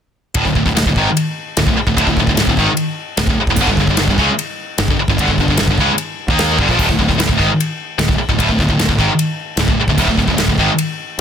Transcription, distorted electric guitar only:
0.36 D2 A2
0.46 D2 A2
0.56 D2 A2
0.66 D2 A2
0.76 D2 A2
0.87 D2 A2
0.97 G#2 D#3
1.59 D2 A2
1.68 D2 A2
1.78 muted distorted electric guitar stroke
1.88 D2 A2
1.97 D2 A2
2.08 D2 A2
2.20 D2 A2
2.29 D2 A2
2.40 D2 A2
2.49 D2 A2
2.59 G#2 D#3
3.18 D2 A2
3.30 D2 A2
3.40 muted distorted electric guitar stroke
3.51 D2 A2
3.61 G2 D3
3.71 G2 D3
3.80 G2 D3
3.91 G2 D3
4.00 G2 D3
4.11 G2 D3
4.19 C#3 G#3
4.79 G2 D3
4.91 G2 D3
5.00 muted distorted electric guitar stroke
5.10 G2 D3
5.20 G2 D3
5.31 G2 D3
5.41 G2 D3
5.50 G2 D3
5.60 G2 D3
5.71 G2 D3
5.81 C#3 G#3
6.30 D#3 A#3 D#4
6.59 G2 D3
6.69 A#2 F3
6.79 D2 A2
6.89 D2 A2
6.99 D2 A2
7.08 D2 A2
7.18 D2 A2
7.28 D2 A2
7.37 G#2 D#3
7.98 D2 A2
8.08 D2 A2
8.18 muted distorted electric guitar stroke
8.29 D2 A2
8.38 D2 A2
8.50 D2 A2
8.60 D2 A2
8.70 D2 A2
8.79 D2 A2
8.89 D2 A2
8.99 G#2 D#3
9.60 D2 A2
9.69 D2 A2
9.80 muted distorted electric guitar stroke
9.89 D2 A2
9.99 D2 A2
10.09 D2 A2
10.18 D2 A2
10.28 D2 A2
10.39 D2 A2
10.49 D2 A2
10.59 G#2 D#3

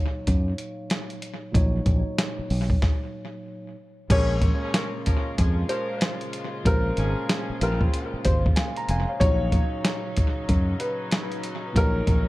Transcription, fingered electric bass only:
0.28 F#2
1.55 A#1
1.86 A#1
2.39 muted fingered electric bass stroke
2.51 B1
4.10 A#1
5.39 F2
6.66 A#1
6.98 G#1
7.50 muted fingered electric bass stroke
7.62 A#1
8.14 muted fingered electric bass stroke
8.26 G#1
8.89 F1
9.21 A#1
10.49 F#2
11.76 A#1
12.08 A#1

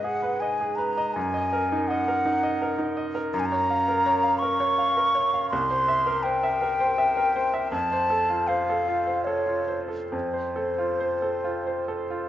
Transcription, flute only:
0.04 F#5
0.40 G#5
0.76 A#5
1.14 G#5
1.88 F#5
3.34 A#5
3.40 G#5
3.46 A#5
4.39 C#6
5.50 C6
6.23 G5
7.72 A5
8.48 F5
9.24 C#5
10.10 C5

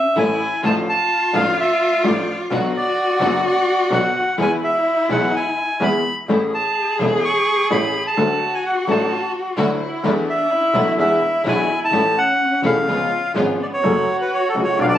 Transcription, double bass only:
0.16 A1
0.64 A1
1.33 A1
2.05 A1
2.51 B1
3.20 F#1
3.91 B1
4.38 E2
5.09 B1
5.80 E2
6.29 A1
7.00 E1
7.71 A1
8.17 D2
8.88 A1
9.57 D2
10.03 E2
10.74 B1
10.97 E2
11.44 B1
11.91 A1
12.63 E1
12.86 C#2
13.34 G#1
13.83 F#1
14.55 C#2
14.78 B1

